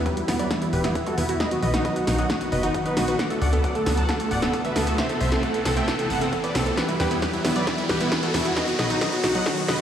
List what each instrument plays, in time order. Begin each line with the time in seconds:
Already playing: supersaw synth E3 G3 B3 F#4, riser
0.06 synth pluck F#3, supersaw synth G4 B4, digital synth lead B4, kick, closed hi-hat
0.17 synth pluck G3, supersaw synth E4, digital synth lead E4, closed hi-hat
0.28 analog synth bass E2, synth pluck B3, supersaw synth E4, digital synth lead E4, snare, open hi-hat, mid tom
0.39 synth pluck F#3, supersaw synth B4 D5, digital synth lead D5, closed hi-hat
0.50 synth pluck E3, supersaw synth E4, digital synth lead E4, kick, snare, closed hi-hat
0.62 synth pluck G3, supersaw synth E4, digital synth lead E4, closed hi-hat
0.73 analog synth bass E1, synth pluck G3, supersaw synth G4 B4, digital synth lead B4, open hi-hat
0.84 synth pluck B3, supersaw synth E4, digital synth lead E4, snare, closed hi-hat, mid tom
0.95 synth pluck E3, supersaw synth E4, digital synth lead E4, kick, closed hi-hat
1.06 synth pluck G3, supersaw synth F#4 A4, digital synth lead A4, closed hi-hat, mid tom
1.18 analog synth bass E2, synth pluck B3, supersaw synth E4, digital synth lead E4, open hi-hat
1.29 digital synth lead E4, supersaw synth E4, synth pluck F#4, closed hi-hat
1.40 synth pluck D#3, supersaw synth D#3 F#3 B4 D#5, digital synth lead D#5, kick, snare, closed hi-hat
1.51 synth pluck B3, supersaw synth F#4, digital synth lead F#4, closed hi-hat
1.62 analog synth bass B1, synth pluck B3, supersaw synth B4 D#5, digital synth lead D#5, open hi-hat
1.74 synth pluck D#4, supersaw synth F#4, digital synth lead F#4, snare, closed hi-hat
1.85 synth pluck F#3, supersaw synth B4 D#5, digital synth lead D#5, kick, closed hi-hat
1.96 synth pluck B3, supersaw synth F#4, digital synth lead F#4, closed hi-hat
2.07 analog synth bass B1, synth pluck D#4, digital synth lead F#4, supersaw synth F#4, snare, open hi-hat, mid tom
2.19 synth pluck F#3, supersaw synth D#5 F#5, digital synth lead F#5, closed hi-hat
2.30 synth pluck D#3, supersaw synth F#4, digital synth lead F#4, kick, snare, closed hi-hat
2.41 synth pluck B3, digital synth lead F#4, supersaw synth F#4, closed hi-hat
2.52 analog synth bass F#1, synth pluck B3, supersaw synth B4 D#5, digital synth lead D#5, open hi-hat
2.63 synth pluck D#4, digital synth lead F#4, supersaw synth F#4, closed hi-hat
2.74 synth pluck D#3, supersaw synth F#4, digital synth lead F#4, kick, closed hi-hat
2.86 synth pluck B3, supersaw synth D#4 B4, digital synth lead B4, closed hi-hat
2.97 analog synth bass B1, synth pluck D#4, digital synth lead F#4, supersaw synth F#4, snare, open hi-hat, mid tom
3.08 digital synth lead F#4, supersaw synth F#4, synth pluck B4, closed hi-hat
3.19 synth pluck D3, supersaw synth D3 A3 D5 F#5, digital synth lead F#5, kick, snare, closed hi-hat
3.30 synth pluck A3, supersaw synth A4, digital synth lead A4, closed hi-hat
3.42 analog synth bass D2, synth pluck A3, supersaw synth D5 F#5, digital synth lead F#5, open hi-hat
3.53 synth pluck B3, digital synth lead A4, supersaw synth A4, closed hi-hat
3.64 synth pluck F#3, supersaw synth D5 F#5, digital synth lead F#5, kick, closed hi-hat
3.75 synth pluck A3, supersaw synth A4, digital synth lead A4, closed hi-hat
3.86 analog synth bass D2, synth pluck B3, supersaw synth A4, digital synth lead A4, snare, open hi-hat, mid tom
3.97 synth pluck F#3, supersaw synth F#5 A5, digital synth lead A5, closed hi-hat
4.09 synth pluck D3, supersaw synth A4, digital synth lead A4, kick, snare, closed hi-hat
4.20 synth pluck A3, supersaw synth A4, digital synth lead A4, closed hi-hat
4.31 analog synth bass D1, synth pluck A3, supersaw synth D5 F#5, digital synth lead F#5, open hi-hat
4.42 synth pluck B3, supersaw synth A4, digital synth lead A4, snare, closed hi-hat, mid tom
4.53 synth pluck D3, supersaw synth A4, digital synth lead A4, kick, closed hi-hat
4.65 synth pluck A3, supersaw synth B4 E5, digital synth lead E5, closed hi-hat, mid tom
4.76 analog synth bass D2, synth pluck B3, supersaw synth A4, digital synth lead A4, snare, open hi-hat
4.87 synth pluck F#4, supersaw synth A4, digital synth lead A4, closed hi-hat
4.98 supersaw synth C3 E4 C5 E5, synth pluck E3, digital synth lead E5, kick, snare, closed hi-hat
5.09 synth pluck B3, supersaw synth A4, digital synth lead A4, closed hi-hat
5.21 analog synth bass C2, synth pluck B3, supersaw synth C5 E5, digital synth lead E5, open hi-hat
5.32 synth pluck C4, supersaw synth A4, digital synth lead A4, snare, closed hi-hat
5.43 synth pluck A3, supersaw synth A4 F#5, digital synth lead F#5, kick, closed hi-hat
5.54 synth pluck B3, supersaw synth A4, digital synth lead A4, closed hi-hat
5.65 analog synth bass C2, synth pluck C4, digital synth lead A4, supersaw synth A4, snare, open hi-hat, mid tom
5.77 synth pluck A3, supersaw synth E5 G5, digital synth lead G5, closed hi-hat
5.88 synth pluck E3, digital synth lead A4, supersaw synth A4, kick, snare, closed hi-hat
5.99 synth pluck B3, digital synth lead A4, supersaw synth A4, closed hi-hat
6.10 analog synth bass G1, synth pluck B3, supersaw synth A4 F#5, digital synth lead F#5, open hi-hat
6.21 synth pluck C4, digital synth lead A4, supersaw synth A4, closed hi-hat
6.33 synth pluck E3, digital synth lead A4, supersaw synth A4, kick, closed hi-hat
6.44 synth pluck B3, supersaw synth B4 D5, digital synth lead D5, closed hi-hat
6.55 analog synth bass C2, synth pluck C4, supersaw synth A4, digital synth lead A4, snare, open hi-hat, mid tom
6.66 supersaw synth A4, synth pluck A4, digital synth lead A4, closed hi-hat
6.77 supersaw synth E3 G3 F#4 G4 B4, synth pluck E3, digital synth lead B4, kick, snare, closed hi-hat
6.89 synth pluck G3, supersaw synth E4, digital synth lead E4, closed hi-hat
7.00 analog synth bass E2, synth pluck G3, supersaw synth G4 B4, digital synth lead B4, snare, open hi-hat
7.11 synth pluck B3, supersaw synth E4, digital synth lead E4, closed hi-hat
7.22 synth pluck F#3, supersaw synth G4 B4, digital synth lead B4, kick, snare, closed hi-hat
7.33 synth pluck G3, supersaw synth E4, digital synth lead E4, closed hi-hat
7.45 analog synth bass E2, synth pluck B3, supersaw synth E4, digital synth lead E4, snare, open hi-hat, mid tom
7.56 synth pluck F#3, supersaw synth B4 D5, digital synth lead D5, closed hi-hat
7.67 synth pluck E3, digital synth lead E4, supersaw synth E4, kick, snare, closed hi-hat
7.78 synth pluck G3, supersaw synth E4, digital synth lead E4, closed hi-hat
7.89 analog synth bass E1, synth pluck G3, supersaw synth G4 B4, digital synth lead B4, snare, open hi-hat
8.01 synth pluck B3, digital synth lead E4, supersaw synth E4, closed hi-hat, mid tom
8.12 synth pluck E3, digital synth lead E4, supersaw synth E4, kick, snare, closed hi-hat
8.23 synth pluck G3, supersaw synth F#4 A4, digital synth lead A4, closed hi-hat, mid tom
8.34 analog synth bass E2, synth pluck B3, digital synth lead E4, supersaw synth E4, snare, open hi-hat
8.45 digital synth lead E4, supersaw synth E4, synth pluck F#4, closed hi-hat
8.57 synth pluck D#3, supersaw synth D#3 F#3 B3 B4 D#5, digital synth lead D#5, kick, snare, closed hi-hat
8.68 synth pluck B3, digital synth lead F#4, supersaw synth F#4, closed hi-hat
8.79 analog synth bass B1, synth pluck B3, supersaw synth B4 D#5, digital synth lead D#5, snare, open hi-hat
8.90 synth pluck D#4, digital synth lead F#4, supersaw synth F#4, closed hi-hat
9.01 synth pluck F#3, supersaw synth B4 D#5, digital synth lead D#5, kick, snare, closed hi-hat
9.12 synth pluck B3, digital synth lead F#4, supersaw synth F#4, closed hi-hat
9.24 analog synth bass B1, synth pluck D#4, digital synth lead F#4, supersaw synth F#4, snare, open hi-hat, mid tom
9.35 synth pluck F#3, supersaw synth D#5 F#5, digital synth lead F#5, closed hi-hat
9.46 synth pluck D#3, digital synth lead F#4, supersaw synth F#4, kick, snare, closed hi-hat
9.57 synth pluck B3, digital synth lead F#4, supersaw synth F#4, closed hi-hat
9.68 analog synth bass F#1, synth pluck B3, supersaw synth B4 D#5, digital synth lead D#5, snare, open hi-hat